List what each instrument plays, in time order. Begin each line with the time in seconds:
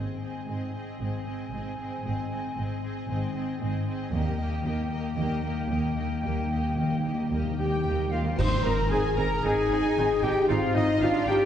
Already playing: double bass section G#1, cello section G#2, timpani G#2, french horn section G#3 C4, viola section C4, clarinet C4, violin section G#4 D#5, flute G#5
0.21 viola section C4, violin section G#4 D#5
0.47 double bass section G#1, cello section G#2, viola section C4, violin section G#4 D#5
0.74 viola section C4, violin section G#4 D#5
0.99 double bass section G#1, cello section G#2, french horn section G#3 C4, viola section C4, violin section G#4 D#5
1.26 viola section C4, violin section G#4 D#5
1.51 double bass section G#1, cello section G#2, viola section C4, violin section G#4 D#5
1.77 viola section C4, violin section G#4 D#5
2.02 double bass section G#1, cello section G#2, viola section C4, violin section G#4 D#5
2.07 french horn section G#3 C4
2.30 viola section C4, violin section G#4 D#5
2.55 double bass section G#1, cello section G#2, viola section C4, violin section G#4 D#5
2.82 viola section C4, violin section G#4 D#5
3.08 double bass section G#1, cello section G#2, french horn section G#3 C4, viola section C4, violin section G#4 D#5
3.35 viola section C4, violin section G#4 D#5
3.60 double bass section G#1, cello section G#2, viola section C4, violin section G#4 D#5
3.86 viola section C4, violin section G#4 D#5
4.12 double bass section D#2, cello section D#2, french horn section G3 A#3, clarinet A#3, viola section A#3, violin section G4 D#5, flute G5
4.34 timpani D#3
4.38 timpani D#3, viola section A#3, violin section G4 D#5
4.49 timpani D#3
4.58 timpani D#3
4.63 double bass section D#2, cello section D#2, timpani D#3, viola section A#3, violin section G4 D#5
4.72 timpani D#3
4.79 timpani D#3
4.88 timpani D#3, viola section A#3, violin section D#5
4.93 timpani D#3, violin section G4
5.11 timpani D#3
5.16 cello section D#2, double bass section D#2, timpani D#3, french horn section G3 A#3, viola section A#3, violin section G4 D#5
5.25 timpani D#3
5.33 timpani D#3
5.40 timpani D#3, viola section A#3, violin section G4 D#5
5.48 timpani D#3
5.54 timpani D#3
5.61 timpani D#3
5.69 cello section D#2, double bass section D#2, timpani D#3, viola section A#3, violin section G4 D#5
5.76 timpani D#3
5.85 timpani D#3
5.92 timpani D#3, violin section G4 D#5
5.97 timpani D#3, viola section A#3
6.08 timpani D#3
6.15 timpani D#3
6.22 cello section D#2, double bass section D#2, timpani D#3, french horn section G3 A#3, viola section A#3, violin section G4 D#5
6.30 timpani D#3
6.39 timpani D#3
6.46 timpani D#3
6.51 timpani D#3, viola section A#3, violin section G4 D#5
6.61 timpani D#3
6.69 timpani D#3
6.76 cello section D#2, double bass section D#2, timpani D#3, viola section A#3, violin section G4 D#5
6.83 timpani D#3
6.91 timpani D#3
6.99 timpani D#3
7.03 viola section A#3, violin section G4 D#5
7.07 timpani D#3
7.14 timpani D#3
7.22 timpani D#3
7.29 cello section D#2, double bass section D#2, timpani D#3, french horn section G3 A#3, viola section A#3, violin section G4 D#5
7.36 timpani D#3
7.44 timpani D#3
7.52 timpani D#3
7.57 timpani D#3, viola section A#3, clarinet G4, violin section G4 D#5 G5, trumpet section G4, french horn section G4, flute G5
7.67 timpani D#3
7.76 timpani D#3
7.84 cello section D#2, double bass section D#2, timpani D#3, viola section A#3, violin section G4 D#5
7.91 timpani D#3
7.98 timpani D#3
8.07 timpani D#3, flute F5
8.11 timpani D#3, viola section A#3, clarinet F4, french horn section F4, trumpet section F4, violin section G4 D#5 F5
8.22 timpani D#3
8.31 timpani D#3
8.38 double bass section G#1, timpani G#2, viola section C4 D#4, french horn section C5, trumpet section C5, clarinet C5, flute C6, violin section C6, concert bass drum, crash
8.64 double bass section G#1, viola section C4 D#4, clarinet A#4, french horn section A#4, trumpet section A#4, flute A#5, violin section A#5
8.90 double bass section G#1, viola section C4 D#4, clarinet G#4, french horn section G#4, trumpet section G#4, violin section G#5, flute G#5
9.16 double bass section G#1, viola section C4 D#4, clarinet A#4, trumpet section A#4, french horn section A#4, violin section A#5, flute A#5
9.42 double bass section G#1, viola section C4 D#4, cello section D#4, clarinet G#4, french horn section G#4, trumpet section G#4, flute G#5, violin section G#5
9.70 double bass section G#1, viola section C4 D#4
9.96 double bass section G#1, viola section C4 D#4
10.22 double bass section G#1, viola section C4 D#4, trumpet section G4, clarinet G4, french horn section G4, flute G5, violin section G5
10.48 double bass section G#1, cello section C4, viola section C4 D#4, clarinet F4, trumpet section F4, french horn section F4, flute F5, violin section F5
10.74 double bass section G#1, viola section C4 D#4, clarinet D#4, trumpet section D#4, french horn section D#4, flute D#5, violin section D#5
11.00 double bass section G#1, viola section C4 D#4, cello section D4, clarinet F4, trumpet section F4, french horn section F4, flute F5, violin section F5
11.26 double bass section G#1, viola section C4 D#4, trumpet section G4, clarinet G4, french horn section G4, violin section G5, flute G5